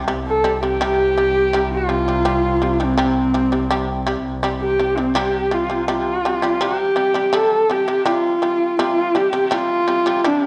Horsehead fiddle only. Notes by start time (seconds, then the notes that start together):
0.28 A4
0.64 G4
1.75 F4
2.84 C4
4.61 G4
4.97 C4
5.18 G4
5.54 F4
5.90 F4
6.62 G4
7.35 A4
7.71 G4
8.07 F4
8.80 F4
9.16 G4
9.53 F4
10.26 D4